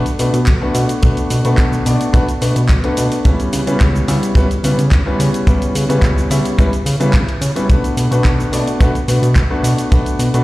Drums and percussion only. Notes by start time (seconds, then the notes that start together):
0.06 closed hi-hat, cabasa
0.19 open hi-hat, cabasa
0.34 closed hi-hat, cabasa
0.46 kick, clap, closed hi-hat, cabasa
0.75 open hi-hat, cabasa
0.89 closed hi-hat, cabasa
1.03 kick, closed hi-hat, cabasa
1.17 closed hi-hat, cabasa
1.30 open hi-hat, cabasa
1.45 closed hi-hat, cabasa
1.58 kick, clap, closed hi-hat, cabasa
1.73 cabasa
1.86 open hi-hat, cabasa
2.01 closed hi-hat, cabasa
2.14 kick, closed hi-hat, cabasa
2.29 closed hi-hat, cabasa
2.42 open hi-hat, cabasa
2.56 closed hi-hat, cabasa
2.69 kick, clap, closed hi-hat, cabasa
2.84 closed hi-hat
2.97 open hi-hat, cabasa
3.12 closed hi-hat, cabasa
3.25 kick, closed hi-hat, cabasa
3.40 closed hi-hat, cabasa
3.53 open hi-hat, cabasa
3.67 closed hi-hat, cabasa
3.80 kick, clap, closed hi-hat, cabasa
3.96 cabasa
4.08 open hi-hat, cabasa
4.23 closed hi-hat, cabasa
4.35 kick, closed hi-hat, cabasa
4.51 closed hi-hat, cabasa
4.64 open hi-hat, cabasa
4.79 closed hi-hat, cabasa
4.92 kick, clap, closed hi-hat, cabasa
5.20 open hi-hat, cabasa
5.34 closed hi-hat, cabasa
5.47 kick, closed hi-hat, cabasa
5.62 closed hi-hat, cabasa
5.75 open hi-hat, cabasa
5.90 closed hi-hat, cabasa
6.02 kick, clap, closed hi-hat, cabasa
6.18 cabasa
6.31 open hi-hat, cabasa
6.45 closed hi-hat, cabasa
6.59 kick, closed hi-hat, cabasa
6.73 closed hi-hat, cabasa
6.86 open hi-hat, cabasa
7.01 closed hi-hat, cabasa
7.13 kick, clap, closed hi-hat, cabasa
7.29 closed hi-hat
7.42 open hi-hat, cabasa
7.56 closed hi-hat, cabasa
7.70 kick, closed hi-hat, cabasa
7.84 closed hi-hat, cabasa
7.97 open hi-hat, cabasa
8.12 closed hi-hat, cabasa
8.25 kick, clap, closed hi-hat, cabasa
8.40 cabasa
8.53 open hi-hat, cabasa
8.68 closed hi-hat, cabasa
8.81 kick, closed hi-hat, cabasa
8.95 closed hi-hat, cabasa
9.08 open hi-hat, cabasa
9.23 closed hi-hat, cabasa
9.36 kick, clap, closed hi-hat, cabasa
9.64 open hi-hat, cabasa
9.78 closed hi-hat, cabasa
9.92 kick, closed hi-hat, cabasa
10.06 closed hi-hat, cabasa
10.20 open hi-hat, cabasa
10.34 closed hi-hat, cabasa